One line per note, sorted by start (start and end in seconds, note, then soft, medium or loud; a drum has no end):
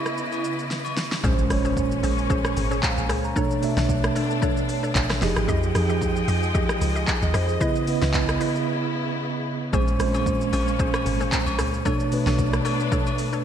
0.00 1.19 C#3 medium
0.00 1.22 C#3 medium
0.00 1.20 B3 medium
0.00 1.22 B3 medium
0.00 0.67 E4 medium
0.00 1.21 E4 medium
0.00 1.22 E4 medium
0.00 1.20 D#5 medium
0.00 1.22 D#5 medium
0.06 cross-stick medium
0.06 shaker soft
0.17 shaker medium
0.32 high agogo medium
0.32 shaker soft
0.44 shaker medium
0.59 shaker medium
0.71 snare medium
0.71 shaker medium
0.85 high agogo medium
0.85 shaker medium
0.97 snare medium
0.97 shaker medium
1.12 snare medium
1.12 shaker soft
1.24 1.48 A#1 loud
1.24 1.45 A#2 medium
1.24 3.34 G#3 medium
1.24 1.46 G#3 medium
1.24 3.34 A#3 medium
1.24 1.34 C#4 loud
1.24 3.34 C#4 medium
1.24 1.46 C#4 medium
1.24 1.34 G#4 medium
1.24 1.34 C5 loud
1.24 1.46 C5 loud
1.24 kick loud
1.24 impact medium
1.24 shaker medium
1.38 shaker medium
1.50 1.99 A#1 loud
1.50 2.36 A#2 medium
1.50 2.36 G#3 medium
1.50 2.36 C#4 medium
1.50 2.37 C#5 loud
1.50 cross-stick medium
1.50 open hi-hat medium
1.50 shaker medium
1.65 1.73 C#4 medium
1.65 1.73 G#4 medium
1.65 1.74 C5 medium
1.65 shaker medium
1.77 kick medium
1.77 shaker medium
1.92 shaker medium
2.03 2.41 A#1 loud
2.03 2.14 C#4 medium
2.03 2.14 G#4 medium
2.03 2.14 C5 medium
2.03 open hi-hat medium
2.03 shaker medium
2.18 shaker medium
2.30 2.67 C#4 medium
2.30 2.68 G#4 medium
2.30 2.68 C5 loud
2.30 kick loud
2.30 shaker medium
2.45 cross-stick loud
2.45 shaker medium
2.57 2.81 G#1 loud
2.57 open hi-hat medium
2.57 shaker medium
2.71 2.79 C#4 medium
2.71 2.80 G#4 medium
2.71 2.80 C5 medium
2.71 shaker medium
2.83 2.97 F5 medium
2.83 kick loud
2.83 clap loud
2.83 shaker medium
2.98 3.11 A#1 medium
2.98 3.23 G#5 medium
2.98 shaker medium
3.09 3.34 C#2 medium
3.09 3.20 C#4 medium
3.09 3.20 G#4 medium
3.09 3.20 C5 medium
3.09 cross-stick loud
3.09 open hi-hat medium
3.09 shaker medium
3.24 3.50 A#5 medium
3.24 shaker medium
3.36 3.58 B2 medium
3.36 5.20 A3 medium
3.36 3.58 A3 medium
3.36 5.20 B3 medium
3.36 3.46 D4 loud
3.36 5.20 D4 medium
3.36 3.58 D4 medium
3.36 3.46 A4 medium
3.36 3.47 C#5 loud
3.36 3.59 C#5 loud
3.36 kick loud
3.36 shaker medium
3.51 shaker medium
3.62 4.48 B2 medium
3.62 4.48 A3 medium
3.62 4.49 D4 medium
3.62 4.49 E5 loud
3.62 open hi-hat medium
3.62 shaker medium
3.77 4.12 B1 loud
3.77 3.86 D4 medium
3.77 3.86 A4 medium
3.77 3.86 C#5 medium
3.77 snare medium
3.77 shaker medium
3.89 kick medium
3.89 shaker medium
4.04 cross-stick loud
4.04 shaker medium
4.15 4.26 D4 medium
4.15 4.26 A4 medium
4.15 4.26 C#5 medium
4.15 open hi-hat medium
4.15 shaker medium
4.30 shaker medium
4.42 4.80 D4 loud
4.42 4.80 A4 medium
4.42 4.80 C#5 loud
4.42 kick loud
4.42 shaker medium
4.57 shaker medium
4.69 open hi-hat medium
4.69 shaker medium
4.83 4.92 D4 medium
4.83 4.92 A4 medium
4.83 4.92 C#5 medium
4.83 shaker medium
4.95 5.20 A1 loud
4.95 kick loud
4.95 clap loud
4.95 shaker medium
5.10 cross-stick loud
5.10 snare medium
5.10 shaker medium
5.21 5.35 F1 loud
5.21 5.65 F3 loud
5.21 7.59 F3 medium
5.21 7.59 G#3 medium
5.21 5.66 D#4 medium
5.21 5.32 G4 medium
5.21 5.66 G4 medium
5.21 5.32 G#4 medium
5.21 5.66 G#4 loud
5.21 9.69 D#5 medium
5.21 5.32 D#5 medium
5.21 7.59 G5 medium
5.21 snare medium
5.21 open hi-hat medium
5.21 shaker medium
5.36 5.47 G#1 loud
5.36 cross-stick loud
5.36 shaker medium
5.48 5.73 F2 loud
5.48 5.59 G4 loud
5.48 5.59 G#4 medium
5.48 5.59 D#5 loud
5.48 kick loud
5.48 shaker medium
5.63 shaker medium
5.75 6.24 F2 loud
5.75 6.60 F3 medium
5.75 6.61 D#4 medium
5.75 6.61 G4 medium
5.75 6.61 G#4 loud
5.75 cross-stick medium
5.75 open hi-hat soft
5.75 shaker medium
5.89 5.98 G4 medium
5.89 5.98 G#4 medium
5.89 5.98 D#5 medium
5.89 shaker medium
6.01 kick medium
6.01 shaker medium
6.16 shaker medium
6.28 6.66 F2 medium
6.28 6.38 G4 medium
6.28 6.38 G#4 medium
6.28 6.39 D#5 medium
6.28 open hi-hat medium
6.28 shaker medium
6.43 shaker medium
6.54 6.92 G4 medium
6.54 6.92 G#4 medium
6.54 6.92 D#5 loud
6.54 kick loud
6.54 shaker medium
6.69 cross-stick loud
6.69 shaker medium
6.81 7.05 C#2 medium
6.81 open hi-hat medium
6.81 shaker medium
6.95 7.04 G4 medium
6.95 7.04 G#4 medium
6.95 7.04 D#5 medium
6.95 shaker medium
7.08 kick loud
7.08 clap loud
7.08 shaker medium
7.22 7.33 D#2 loud
7.22 7.34 D#5 medium
7.22 shaker medium
7.34 7.59 F2 loud
7.34 7.45 G4 medium
7.34 7.45 G#4 medium
7.34 7.49 C5 medium
7.34 7.45 D#5 medium
7.34 cross-stick medium
7.34 open hi-hat medium
7.34 shaker medium
7.49 7.75 G#4 medium
7.49 shaker medium
7.61 7.82 C#3 medium
7.61 9.71 C#3 medium
7.61 9.71 B3 medium
7.61 7.83 B3 medium
7.61 7.71 E4 loud
7.61 9.71 E4 medium
7.61 7.83 E4 medium
7.61 7.71 B4 medium
7.61 7.71 D#5 loud
7.61 7.83 D#5 loud
7.61 kick loud
7.61 shaker medium
7.75 shaker medium
7.87 8.73 C#3 medium
7.87 8.73 B3 medium
7.87 8.73 E4 medium
7.87 8.74 B4 loud
7.87 open hi-hat medium
7.87 shaker medium
8.02 8.37 C#2 loud
8.02 8.10 E4 medium
8.02 8.11 B4 medium
8.02 8.11 D#5 medium
8.02 snare medium
8.02 shaker medium
8.14 kick medium
8.14 clap loud
8.14 shaker medium
8.29 cross-stick loud
8.29 shaker medium
8.40 8.51 E4 medium
8.40 8.51 B4 medium
8.40 8.51 D#5 medium
8.40 open hi-hat medium
8.40 shaker medium
8.55 shaker medium
9.73 9.98 A#1 loud
9.73 9.95 A#2 medium
9.73 11.84 G#3 medium
9.73 9.95 G#3 medium
9.73 11.84 A#3 medium
9.73 9.83 C#4 loud
9.73 11.84 C#4 medium
9.73 9.96 C#4 medium
9.73 9.84 G#4 medium
9.73 9.84 C5 loud
9.73 9.96 C5 loud
9.73 kick loud
9.73 high agogo medium
9.73 shaker medium
9.88 shaker medium
10.00 10.49 A#1 loud
10.00 10.85 A#2 medium
10.00 10.86 G#3 medium
10.00 10.07 C4 medium
10.00 10.86 C5 loud
10.00 cross-stick medium
10.00 open hi-hat medium
10.00 shaker medium
10.07 10.89 C#4 medium
10.14 10.23 C#4 medium
10.14 10.23 G#4 medium
10.14 10.23 C5 medium
10.14 high agogo medium
10.14 shaker medium
10.26 kick medium
10.26 shaker medium
10.41 shaker medium
10.53 10.90 A#1 loud
10.53 10.63 C#4 medium
10.53 10.63 G#4 medium
10.53 10.63 C5 medium
10.53 open hi-hat medium
10.53 high agogo medium
10.53 shaker medium
10.68 shaker medium
10.79 11.17 C#4 medium
10.79 11.17 G#4 medium
10.79 11.17 C5 loud
10.79 kick loud
10.79 shaker medium
10.94 cross-stick loud
10.94 high agogo medium
10.94 shaker medium
11.06 11.30 G#1 loud
11.06 open hi-hat medium
11.06 shaker loud
11.20 11.29 C#4 medium
11.20 11.29 G#4 medium
11.20 11.29 C5 medium
11.20 shaker medium
11.32 kick loud
11.32 clap loud
11.32 shaker medium
11.46 11.60 A#1 medium
11.46 high agogo medium
11.46 shaker medium
11.59 11.83 C#2 loud
11.59 11.69 C#4 medium
11.59 11.69 G#4 medium
11.59 11.70 C5 medium
11.59 cross-stick loud
11.59 open hi-hat medium
11.59 shaker medium
11.74 shaker medium
11.85 12.07 B2 loud
11.85 13.45 A3 medium
11.85 12.08 A3 medium
11.85 13.45 B3 medium
11.85 11.96 D4 loud
11.85 13.45 D4 medium
11.85 12.08 D4 medium
11.85 11.96 A4 medium
11.85 11.96 C#5 loud
11.85 12.08 C#5 loud
11.85 kick loud
11.85 high agogo medium
11.85 shaker medium
12.00 shaker medium
12.12 12.98 B2 medium
12.12 12.98 A3 medium
12.12 12.98 D4 medium
12.12 12.98 B4 loud
12.12 open hi-hat soft
12.12 shaker medium
12.26 12.62 B1 loud
12.26 12.35 D4 medium
12.26 12.35 A4 medium
12.26 12.35 C#5 medium
12.26 snare medium
12.26 high agogo medium
12.26 shaker medium
12.38 kick medium
12.38 shaker medium
12.53 cross-stick loud
12.53 shaker medium
12.65 12.75 D4 medium
12.65 12.76 A4 medium
12.65 12.76 C#5 medium
12.65 open hi-hat medium
12.65 high agogo medium
12.65 shaker medium
12.80 shaker medium
12.91 13.29 D4 medium
12.91 13.29 A4 medium
12.91 13.30 C#5 loud
12.91 kick loud
12.91 shaker medium
13.06 high agogo medium
13.06 shaker medium
13.18 open hi-hat medium
13.18 shaker loud
13.33 13.41 D4 medium
13.33 13.41 A4 medium
13.33 13.42 C#5 medium
13.33 shaker medium